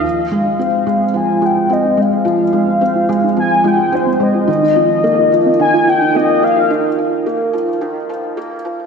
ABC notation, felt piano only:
X:1
M:4/4
L:1/8
Q:1/4=108
K:Ebmix
V:1 name="Felt piano" clef=bass
F, A, C A, F, A, C A, | F, A, C A, F, A, C A, | E, F, B, F, E, F, B, F, | E, F, B, F, E, F, B, F, |]